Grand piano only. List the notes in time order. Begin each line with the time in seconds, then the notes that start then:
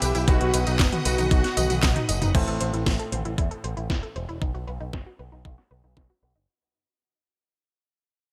Already playing: E3 B3 E4 G4 B4
0.28 B2 B3 D#4 F#4 B4
2.35 A2 C4 E4 A4 C5